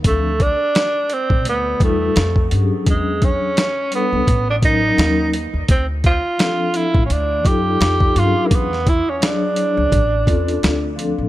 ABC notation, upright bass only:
X:1
M:4/4
L:1/16
Q:"Swing 16ths" 1/4=85
K:Ephr
V:1 name="Upright bass" clef=bass
D,,3 z4 A,,, D,,2 E,,2 F,,2 G,, z | E,,3 z4 ^C,, A,,,4 _E,,3 E,, | D,,3 z4 A,,, D,,2 ^F,,2 =F,,2 G,, z | E,,3 z4 ^C,, A,,,2 E,,2 D,,3 A,,, |]